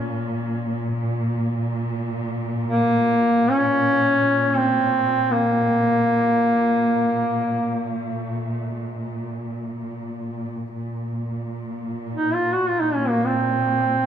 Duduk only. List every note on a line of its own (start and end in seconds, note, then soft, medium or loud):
2.68 3.52 A#3 medium
3.51 4.58 C#4 loud
4.57 5.33 C4 medium
5.32 7.96 A#3 medium
12.15 12.36 D#4 medium
12.34 12.54 F4 medium
12.53 12.70 F#4 medium
12.68 12.82 F4 medium
12.80 12.96 D#4 medium
12.94 13.10 C#4 medium
13.09 13.28 A#3 medium
13.26 14.06 C4 medium